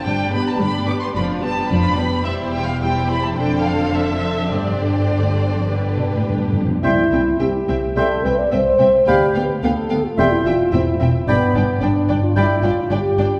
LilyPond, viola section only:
\new Staff \with { instrumentName = "Viola section" } { \time 4/4 \key c \major \tempo 4 = 108 <g d'>8 <b g'>8 <g d'>8 <b g'>8 <f d'>8 <g b>8 <f d'>8 <g b>8 | <g e'>4 <g e'>4 <d d'>2 | <d d'>2 <d d'>4. r8 | c'8 c'8 c'8 c'8 c'8 c'8 c'8 c'8 |
b8 b8 b8 b8 c'8 c'8 c'8 c'8 | d'8 d'8 d'8 d'8 d'8 d'8 d'8 d'8 | }